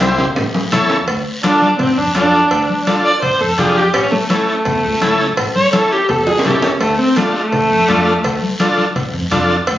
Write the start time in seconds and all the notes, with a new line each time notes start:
Already playing: C2
0.00 E4 G4 C5, cowbell, high conga, low timbale, short guiro
0.18 low conga, low timbale, short guiro
0.36 A1, cowbell, low timbale, long guiro
0.55 high conga, low timbale
0.72 E2 E4 A4 C#5, cowbell, high conga, low conga, short guiro
0.90 low timbale, short guiro
1.07 D2, cowbell, high conga, long guiro
1.43 D4 F4 A4, cowbell, high conga, short guiro
1.62 high conga, short guiro
1.79 A1 C4, cowbell, low conga, long guiro
1.98 F2 D4, high conga
2.15 F2 D4 F4 A4, cowbell, high conga, short guiro
2.33 short guiro
2.51 D2, cowbell, high conga, long guiro
2.69 high conga
2.87 D4 F4 A4, cowbell, high conga, short guiro
3.05 D5, short guiro
3.22 A1 C5, cowbell, low conga, long guiro
3.40 F2 A4, high conga
3.58 F2 D4 F4 G4 G#4, cowbell, high conga, low conga, short guiro
3.77 G4, short guiro
3.94 A1 C#4, cowbell, long guiro
4.12 A3, high conga
4.30 A3 C#4 E4 A4, cowbell, high conga, short guiro
4.48 short guiro
4.65 E2, cowbell, low conga, long guiro
4.84 C#2, high conga
5.01 C#2 C#4 E4 A4, cowbell, high conga, short guiro
5.20 short guiro
5.37 A1, cowbell, high conga, long guiro
5.56 C#5, high conga
5.73 C#4 E4 A4, cowbell, high conga, short guiro
5.91 G4, short guiro
6.09 E2 A4, cowbell, low conga, long guiro
6.27 C#2 G#4, high conga, high timbale
6.39 low timbale
6.45 A1 C#4 E4 G4 A4, cowbell, high conga, low conga, short guiro
6.50 low timbale
6.62 C#2 C#4, low timbale, short guiro
6.81 D2 A3, cowbell, high conga, long guiro
7.00 C4
7.16 A3 D4 F4 A4, cowbell, high conga, short guiro
7.35 A3, short guiro
7.52 A1, cowbell, low conga, long guiro
7.71 F2, high conga
7.88 F2 D4 F4 A4, cowbell, high conga, short guiro
8.06 short guiro
8.24 D2, cowbell, high conga, low conga, long guiro
8.42 high conga
8.60 D4 F4 A4, cowbell, high conga, short guiro
8.78 high conga, short guiro
8.96 A1, cowbell, low conga, long guiro
9.13 F2, high conga
9.31 F2 D4 F4 A4, cowbell, high conga, low conga, short guiro
9.49 short guiro
9.67 D2, cowbell, long guiro